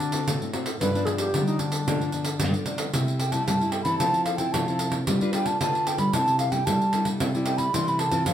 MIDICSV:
0, 0, Header, 1, 5, 480
1, 0, Start_track
1, 0, Key_signature, 0, "major"
1, 0, Tempo, 532387
1, 738, Time_signature, 4, 2, 24, 8
1, 7514, End_track
2, 0, Start_track
2, 0, Title_t, "Flute"
2, 0, Program_c, 0, 73
2, 0, Note_on_c, 0, 62, 83
2, 456, Note_off_c, 0, 62, 0
2, 722, Note_on_c, 0, 71, 110
2, 951, Note_on_c, 0, 68, 90
2, 964, Note_off_c, 0, 71, 0
2, 1061, Note_on_c, 0, 67, 88
2, 1074, Note_off_c, 0, 68, 0
2, 1314, Note_off_c, 0, 67, 0
2, 1319, Note_on_c, 0, 63, 81
2, 1437, Note_on_c, 0, 62, 82
2, 1450, Note_off_c, 0, 63, 0
2, 2167, Note_off_c, 0, 62, 0
2, 2881, Note_on_c, 0, 79, 81
2, 2992, Note_on_c, 0, 81, 93
2, 3006, Note_off_c, 0, 79, 0
2, 3118, Note_off_c, 0, 81, 0
2, 3123, Note_on_c, 0, 81, 93
2, 3349, Note_on_c, 0, 79, 87
2, 3362, Note_off_c, 0, 81, 0
2, 3450, Note_off_c, 0, 79, 0
2, 3455, Note_on_c, 0, 83, 101
2, 3584, Note_off_c, 0, 83, 0
2, 3590, Note_on_c, 0, 81, 100
2, 3826, Note_off_c, 0, 81, 0
2, 3832, Note_on_c, 0, 77, 76
2, 3940, Note_on_c, 0, 79, 85
2, 3953, Note_off_c, 0, 77, 0
2, 4077, Note_on_c, 0, 81, 72
2, 4091, Note_off_c, 0, 79, 0
2, 4448, Note_off_c, 0, 81, 0
2, 4820, Note_on_c, 0, 79, 81
2, 4928, Note_on_c, 0, 81, 92
2, 4942, Note_off_c, 0, 79, 0
2, 5053, Note_off_c, 0, 81, 0
2, 5060, Note_on_c, 0, 81, 95
2, 5295, Note_on_c, 0, 79, 94
2, 5309, Note_off_c, 0, 81, 0
2, 5399, Note_on_c, 0, 83, 102
2, 5413, Note_off_c, 0, 79, 0
2, 5530, Note_on_c, 0, 81, 100
2, 5544, Note_off_c, 0, 83, 0
2, 5760, Note_off_c, 0, 81, 0
2, 5765, Note_on_c, 0, 77, 84
2, 5872, Note_on_c, 0, 79, 94
2, 5886, Note_off_c, 0, 77, 0
2, 6001, Note_on_c, 0, 81, 79
2, 6015, Note_off_c, 0, 79, 0
2, 6370, Note_off_c, 0, 81, 0
2, 6722, Note_on_c, 0, 79, 87
2, 6831, Note_on_c, 0, 83, 100
2, 6844, Note_off_c, 0, 79, 0
2, 6978, Note_on_c, 0, 84, 105
2, 6992, Note_off_c, 0, 83, 0
2, 7108, Note_on_c, 0, 83, 95
2, 7121, Note_off_c, 0, 84, 0
2, 7206, Note_on_c, 0, 81, 98
2, 7220, Note_off_c, 0, 83, 0
2, 7453, Note_off_c, 0, 81, 0
2, 7461, Note_on_c, 0, 77, 91
2, 7514, Note_off_c, 0, 77, 0
2, 7514, End_track
3, 0, Start_track
3, 0, Title_t, "Nylon-string guitar"
3, 0, Program_c, 1, 24
3, 0, Note_on_c, 1, 50, 54
3, 0, Note_on_c, 1, 57, 57
3, 0, Note_on_c, 1, 60, 57
3, 0, Note_on_c, 1, 66, 75
3, 93, Note_off_c, 1, 57, 0
3, 94, Note_off_c, 1, 60, 0
3, 97, Note_off_c, 1, 66, 0
3, 126, Note_on_c, 1, 57, 56
3, 130, Note_on_c, 1, 60, 58
3, 131, Note_on_c, 1, 66, 65
3, 237, Note_off_c, 1, 50, 0
3, 257, Note_on_c, 1, 45, 56
3, 454, Note_off_c, 1, 57, 0
3, 454, Note_off_c, 1, 60, 0
3, 456, Note_off_c, 1, 66, 0
3, 486, Note_on_c, 1, 57, 53
3, 488, Note_on_c, 1, 60, 58
3, 492, Note_on_c, 1, 66, 68
3, 634, Note_off_c, 1, 57, 0
3, 634, Note_off_c, 1, 60, 0
3, 635, Note_off_c, 1, 66, 0
3, 714, Note_off_c, 1, 45, 0
3, 727, Note_on_c, 1, 43, 59
3, 734, Note_on_c, 1, 59, 50
3, 735, Note_on_c, 1, 53, 58
3, 739, Note_on_c, 1, 62, 60
3, 806, Note_off_c, 1, 53, 0
3, 808, Note_off_c, 1, 59, 0
3, 810, Note_off_c, 1, 62, 0
3, 854, Note_on_c, 1, 53, 61
3, 858, Note_on_c, 1, 59, 61
3, 864, Note_on_c, 1, 62, 74
3, 1178, Note_off_c, 1, 53, 0
3, 1178, Note_off_c, 1, 59, 0
3, 1182, Note_off_c, 1, 62, 0
3, 1189, Note_off_c, 1, 43, 0
3, 1208, Note_on_c, 1, 50, 57
3, 1211, Note_on_c, 1, 53, 58
3, 1216, Note_on_c, 1, 59, 62
3, 1217, Note_on_c, 1, 62, 65
3, 1523, Note_off_c, 1, 53, 0
3, 1524, Note_off_c, 1, 59, 0
3, 1527, Note_off_c, 1, 62, 0
3, 1670, Note_off_c, 1, 50, 0
3, 1686, Note_on_c, 1, 43, 60
3, 1690, Note_on_c, 1, 53, 57
3, 1691, Note_on_c, 1, 59, 58
3, 1697, Note_on_c, 1, 62, 68
3, 1894, Note_off_c, 1, 53, 0
3, 1896, Note_off_c, 1, 59, 0
3, 1898, Note_off_c, 1, 62, 0
3, 1925, Note_on_c, 1, 53, 53
3, 1928, Note_on_c, 1, 59, 50
3, 1932, Note_on_c, 1, 62, 55
3, 2073, Note_off_c, 1, 53, 0
3, 2073, Note_off_c, 1, 59, 0
3, 2076, Note_off_c, 1, 62, 0
3, 2148, Note_off_c, 1, 43, 0
3, 2170, Note_on_c, 1, 50, 54
3, 2175, Note_on_c, 1, 53, 53
3, 2177, Note_on_c, 1, 59, 55
3, 2179, Note_on_c, 1, 62, 59
3, 2377, Note_off_c, 1, 59, 0
3, 2378, Note_off_c, 1, 53, 0
3, 2380, Note_off_c, 1, 62, 0
3, 2402, Note_on_c, 1, 53, 51
3, 2407, Note_on_c, 1, 59, 51
3, 2410, Note_on_c, 1, 62, 64
3, 2631, Note_off_c, 1, 50, 0
3, 2631, Note_off_c, 1, 53, 0
3, 2632, Note_off_c, 1, 59, 0
3, 2635, Note_off_c, 1, 62, 0
3, 2651, Note_on_c, 1, 48, 57
3, 2653, Note_on_c, 1, 55, 51
3, 2657, Note_on_c, 1, 64, 55
3, 2658, Note_on_c, 1, 57, 56
3, 2880, Note_off_c, 1, 55, 0
3, 2882, Note_off_c, 1, 57, 0
3, 2883, Note_off_c, 1, 64, 0
3, 2992, Note_on_c, 1, 55, 60
3, 2997, Note_on_c, 1, 57, 59
3, 3000, Note_on_c, 1, 64, 71
3, 3111, Note_off_c, 1, 48, 0
3, 3133, Note_on_c, 1, 43, 55
3, 3207, Note_off_c, 1, 55, 0
3, 3209, Note_off_c, 1, 57, 0
3, 3211, Note_off_c, 1, 64, 0
3, 3258, Note_on_c, 1, 55, 55
3, 3262, Note_on_c, 1, 57, 55
3, 3266, Note_on_c, 1, 64, 58
3, 3460, Note_off_c, 1, 55, 0
3, 3462, Note_off_c, 1, 57, 0
3, 3463, Note_off_c, 1, 64, 0
3, 3473, Note_on_c, 1, 60, 56
3, 3482, Note_on_c, 1, 64, 68
3, 3484, Note_on_c, 1, 69, 65
3, 3591, Note_off_c, 1, 43, 0
3, 3620, Note_on_c, 1, 53, 57
3, 3927, Note_off_c, 1, 60, 0
3, 3932, Note_off_c, 1, 64, 0
3, 3932, Note_off_c, 1, 69, 0
3, 3960, Note_on_c, 1, 60, 64
3, 3966, Note_on_c, 1, 64, 62
3, 3969, Note_on_c, 1, 69, 62
3, 4075, Note_off_c, 1, 53, 0
3, 4113, Note_on_c, 1, 48, 58
3, 4171, Note_off_c, 1, 60, 0
3, 4174, Note_off_c, 1, 64, 0
3, 4175, Note_off_c, 1, 69, 0
3, 4226, Note_on_c, 1, 60, 62
3, 4233, Note_on_c, 1, 64, 67
3, 4235, Note_on_c, 1, 69, 65
3, 4544, Note_off_c, 1, 60, 0
3, 4547, Note_off_c, 1, 64, 0
3, 4547, Note_off_c, 1, 69, 0
3, 4561, Note_off_c, 1, 48, 0
3, 4584, Note_on_c, 1, 55, 54
3, 4584, Note_on_c, 1, 62, 52
3, 4589, Note_on_c, 1, 65, 51
3, 4593, Note_on_c, 1, 71, 61
3, 4662, Note_off_c, 1, 62, 0
3, 4665, Note_off_c, 1, 65, 0
3, 4667, Note_off_c, 1, 71, 0
3, 4705, Note_on_c, 1, 62, 68
3, 4710, Note_on_c, 1, 65, 69
3, 4710, Note_on_c, 1, 71, 64
3, 4784, Note_off_c, 1, 62, 0
3, 4784, Note_off_c, 1, 65, 0
3, 4786, Note_off_c, 1, 71, 0
3, 4814, Note_on_c, 1, 62, 59
3, 4819, Note_on_c, 1, 65, 56
3, 4820, Note_on_c, 1, 71, 66
3, 5018, Note_off_c, 1, 62, 0
3, 5019, Note_off_c, 1, 65, 0
3, 5021, Note_off_c, 1, 71, 0
3, 5038, Note_off_c, 1, 55, 0
3, 5057, Note_on_c, 1, 50, 60
3, 5058, Note_on_c, 1, 62, 58
3, 5060, Note_on_c, 1, 65, 56
3, 5068, Note_on_c, 1, 71, 65
3, 5499, Note_off_c, 1, 62, 0
3, 5501, Note_off_c, 1, 65, 0
3, 5505, Note_off_c, 1, 71, 0
3, 5514, Note_off_c, 1, 50, 0
3, 5531, Note_on_c, 1, 48, 57
3, 5534, Note_on_c, 1, 55, 61
3, 5540, Note_on_c, 1, 62, 56
3, 5544, Note_on_c, 1, 64, 61
3, 5857, Note_off_c, 1, 55, 0
3, 5858, Note_off_c, 1, 62, 0
3, 5863, Note_off_c, 1, 64, 0
3, 5880, Note_on_c, 1, 55, 61
3, 5885, Note_on_c, 1, 62, 60
3, 5889, Note_on_c, 1, 64, 61
3, 5971, Note_off_c, 1, 55, 0
3, 5973, Note_off_c, 1, 62, 0
3, 5975, Note_off_c, 1, 64, 0
3, 5992, Note_off_c, 1, 48, 0
3, 6026, Note_on_c, 1, 55, 63
3, 6031, Note_off_c, 1, 55, 0
3, 6031, Note_on_c, 1, 55, 52
3, 6032, Note_on_c, 1, 62, 54
3, 6035, Note_on_c, 1, 64, 61
3, 6165, Note_off_c, 1, 62, 0
3, 6167, Note_off_c, 1, 64, 0
3, 6242, Note_off_c, 1, 55, 0
3, 6253, Note_on_c, 1, 55, 64
3, 6257, Note_on_c, 1, 62, 57
3, 6262, Note_on_c, 1, 64, 64
3, 6477, Note_off_c, 1, 55, 0
3, 6479, Note_off_c, 1, 62, 0
3, 6481, Note_off_c, 1, 64, 0
3, 6504, Note_on_c, 1, 48, 57
3, 6507, Note_on_c, 1, 55, 55
3, 6511, Note_on_c, 1, 64, 62
3, 6514, Note_on_c, 1, 57, 56
3, 6584, Note_off_c, 1, 55, 0
3, 6585, Note_off_c, 1, 57, 0
3, 6587, Note_off_c, 1, 64, 0
3, 6623, Note_on_c, 1, 55, 68
3, 6629, Note_on_c, 1, 57, 62
3, 6633, Note_on_c, 1, 64, 67
3, 6943, Note_off_c, 1, 55, 0
3, 6944, Note_off_c, 1, 57, 0
3, 6947, Note_off_c, 1, 64, 0
3, 6958, Note_off_c, 1, 48, 0
3, 6973, Note_on_c, 1, 48, 64
3, 6975, Note_on_c, 1, 55, 56
3, 6979, Note_on_c, 1, 57, 62
3, 6985, Note_on_c, 1, 64, 70
3, 7201, Note_off_c, 1, 55, 0
3, 7204, Note_off_c, 1, 57, 0
3, 7205, Note_off_c, 1, 64, 0
3, 7320, Note_on_c, 1, 60, 61
3, 7324, Note_on_c, 1, 65, 63
3, 7328, Note_on_c, 1, 69, 69
3, 7432, Note_off_c, 1, 48, 0
3, 7448, Note_on_c, 1, 53, 63
3, 7514, Note_off_c, 1, 53, 0
3, 7514, Note_off_c, 1, 60, 0
3, 7514, Note_off_c, 1, 65, 0
3, 7514, Note_off_c, 1, 69, 0
3, 7514, End_track
4, 0, Start_track
4, 0, Title_t, "Nylon-string guitar"
4, 0, Program_c, 2, 24
4, 0, Note_on_c, 2, 50, 86
4, 181, Note_off_c, 2, 50, 0
4, 253, Note_on_c, 2, 50, 92
4, 357, Note_off_c, 2, 50, 0
4, 381, Note_on_c, 2, 45, 80
4, 686, Note_off_c, 2, 45, 0
4, 731, Note_on_c, 2, 43, 96
4, 1214, Note_off_c, 2, 43, 0
4, 1214, Note_on_c, 2, 55, 82
4, 1624, Note_off_c, 2, 55, 0
4, 1690, Note_on_c, 2, 50, 86
4, 2173, Note_on_c, 2, 43, 91
4, 2174, Note_off_c, 2, 50, 0
4, 2277, Note_off_c, 2, 43, 0
4, 2295, Note_on_c, 2, 50, 70
4, 2602, Note_off_c, 2, 50, 0
4, 2650, Note_on_c, 2, 48, 79
4, 3061, Note_off_c, 2, 48, 0
4, 3130, Note_on_c, 2, 55, 84
4, 3439, Note_off_c, 2, 55, 0
4, 3476, Note_on_c, 2, 52, 90
4, 3587, Note_off_c, 2, 52, 0
4, 3612, Note_on_c, 2, 53, 85
4, 4023, Note_off_c, 2, 53, 0
4, 4094, Note_on_c, 2, 53, 86
4, 4504, Note_off_c, 2, 53, 0
4, 4573, Note_on_c, 2, 55, 93
4, 4983, Note_off_c, 2, 55, 0
4, 5054, Note_on_c, 2, 50, 81
4, 5362, Note_off_c, 2, 50, 0
4, 5392, Note_on_c, 2, 55, 90
4, 5506, Note_off_c, 2, 55, 0
4, 5528, Note_on_c, 2, 48, 83
4, 5941, Note_off_c, 2, 48, 0
4, 6013, Note_on_c, 2, 55, 98
4, 6424, Note_off_c, 2, 55, 0
4, 6492, Note_on_c, 2, 48, 87
4, 6903, Note_off_c, 2, 48, 0
4, 6976, Note_on_c, 2, 52, 82
4, 7283, Note_off_c, 2, 52, 0
4, 7316, Note_on_c, 2, 52, 97
4, 7428, Note_off_c, 2, 52, 0
4, 7457, Note_on_c, 2, 53, 97
4, 7514, Note_off_c, 2, 53, 0
4, 7514, End_track
5, 0, Start_track
5, 0, Title_t, "Pandeiro"
5, 2, Note_on_c, 9, 54, 53
5, 92, Note_off_c, 9, 54, 0
5, 110, Note_on_c, 9, 54, 66
5, 200, Note_off_c, 9, 54, 0
5, 248, Note_on_c, 9, 54, 81
5, 338, Note_off_c, 9, 54, 0
5, 378, Note_on_c, 9, 54, 30
5, 468, Note_off_c, 9, 54, 0
5, 482, Note_on_c, 9, 54, 64
5, 572, Note_off_c, 9, 54, 0
5, 593, Note_on_c, 9, 54, 68
5, 684, Note_off_c, 9, 54, 0
5, 731, Note_on_c, 9, 54, 78
5, 821, Note_off_c, 9, 54, 0
5, 858, Note_on_c, 9, 54, 37
5, 949, Note_off_c, 9, 54, 0
5, 961, Note_on_c, 9, 54, 59
5, 1051, Note_off_c, 9, 54, 0
5, 1067, Note_on_c, 9, 54, 71
5, 1157, Note_off_c, 9, 54, 0
5, 1207, Note_on_c, 9, 54, 75
5, 1298, Note_off_c, 9, 54, 0
5, 1329, Note_on_c, 9, 54, 34
5, 1419, Note_off_c, 9, 54, 0
5, 1435, Note_on_c, 9, 54, 60
5, 1525, Note_off_c, 9, 54, 0
5, 1548, Note_on_c, 9, 54, 64
5, 1638, Note_off_c, 9, 54, 0
5, 1692, Note_on_c, 9, 54, 90
5, 1782, Note_off_c, 9, 54, 0
5, 1815, Note_on_c, 9, 54, 34
5, 1906, Note_off_c, 9, 54, 0
5, 1915, Note_on_c, 9, 54, 49
5, 2005, Note_off_c, 9, 54, 0
5, 2024, Note_on_c, 9, 54, 68
5, 2114, Note_off_c, 9, 54, 0
5, 2160, Note_on_c, 9, 54, 84
5, 2250, Note_off_c, 9, 54, 0
5, 2288, Note_on_c, 9, 54, 32
5, 2378, Note_off_c, 9, 54, 0
5, 2395, Note_on_c, 9, 54, 60
5, 2485, Note_off_c, 9, 54, 0
5, 2507, Note_on_c, 9, 54, 76
5, 2597, Note_off_c, 9, 54, 0
5, 2646, Note_on_c, 9, 54, 84
5, 2736, Note_off_c, 9, 54, 0
5, 2777, Note_on_c, 9, 54, 32
5, 2867, Note_off_c, 9, 54, 0
5, 2881, Note_on_c, 9, 54, 64
5, 2971, Note_off_c, 9, 54, 0
5, 2994, Note_on_c, 9, 54, 59
5, 3084, Note_off_c, 9, 54, 0
5, 3134, Note_on_c, 9, 54, 80
5, 3224, Note_off_c, 9, 54, 0
5, 3257, Note_on_c, 9, 54, 32
5, 3347, Note_off_c, 9, 54, 0
5, 3354, Note_on_c, 9, 54, 67
5, 3444, Note_off_c, 9, 54, 0
5, 3470, Note_on_c, 9, 54, 55
5, 3560, Note_off_c, 9, 54, 0
5, 3606, Note_on_c, 9, 54, 80
5, 3696, Note_off_c, 9, 54, 0
5, 3732, Note_on_c, 9, 54, 33
5, 3823, Note_off_c, 9, 54, 0
5, 3837, Note_on_c, 9, 54, 65
5, 3928, Note_off_c, 9, 54, 0
5, 3951, Note_on_c, 9, 54, 55
5, 4041, Note_off_c, 9, 54, 0
5, 4092, Note_on_c, 9, 54, 88
5, 4182, Note_off_c, 9, 54, 0
5, 4218, Note_on_c, 9, 54, 29
5, 4309, Note_off_c, 9, 54, 0
5, 4319, Note_on_c, 9, 54, 67
5, 4409, Note_off_c, 9, 54, 0
5, 4432, Note_on_c, 9, 54, 64
5, 4523, Note_off_c, 9, 54, 0
5, 4572, Note_on_c, 9, 54, 89
5, 4662, Note_off_c, 9, 54, 0
5, 4698, Note_on_c, 9, 54, 34
5, 4788, Note_off_c, 9, 54, 0
5, 4804, Note_on_c, 9, 54, 68
5, 4894, Note_off_c, 9, 54, 0
5, 4920, Note_on_c, 9, 54, 59
5, 5010, Note_off_c, 9, 54, 0
5, 5055, Note_on_c, 9, 54, 83
5, 5146, Note_off_c, 9, 54, 0
5, 5184, Note_on_c, 9, 54, 34
5, 5274, Note_off_c, 9, 54, 0
5, 5289, Note_on_c, 9, 54, 66
5, 5379, Note_off_c, 9, 54, 0
5, 5395, Note_on_c, 9, 54, 58
5, 5485, Note_off_c, 9, 54, 0
5, 5530, Note_on_c, 9, 54, 87
5, 5620, Note_off_c, 9, 54, 0
5, 5658, Note_on_c, 9, 54, 35
5, 5748, Note_off_c, 9, 54, 0
5, 5761, Note_on_c, 9, 54, 60
5, 5851, Note_off_c, 9, 54, 0
5, 5878, Note_on_c, 9, 54, 61
5, 5968, Note_off_c, 9, 54, 0
5, 6012, Note_on_c, 9, 54, 86
5, 6103, Note_off_c, 9, 54, 0
5, 6144, Note_on_c, 9, 54, 29
5, 6235, Note_off_c, 9, 54, 0
5, 6246, Note_on_c, 9, 54, 67
5, 6336, Note_off_c, 9, 54, 0
5, 6358, Note_on_c, 9, 54, 63
5, 6448, Note_off_c, 9, 54, 0
5, 6494, Note_on_c, 9, 54, 85
5, 6584, Note_off_c, 9, 54, 0
5, 6624, Note_on_c, 9, 54, 35
5, 6714, Note_off_c, 9, 54, 0
5, 6722, Note_on_c, 9, 54, 71
5, 6812, Note_off_c, 9, 54, 0
5, 6836, Note_on_c, 9, 54, 57
5, 6927, Note_off_c, 9, 54, 0
5, 6979, Note_on_c, 9, 54, 83
5, 7069, Note_off_c, 9, 54, 0
5, 7104, Note_on_c, 9, 54, 33
5, 7194, Note_off_c, 9, 54, 0
5, 7204, Note_on_c, 9, 54, 68
5, 7294, Note_off_c, 9, 54, 0
5, 7316, Note_on_c, 9, 54, 61
5, 7406, Note_off_c, 9, 54, 0
5, 7447, Note_on_c, 9, 54, 87
5, 7514, Note_off_c, 9, 54, 0
5, 7514, End_track
0, 0, End_of_file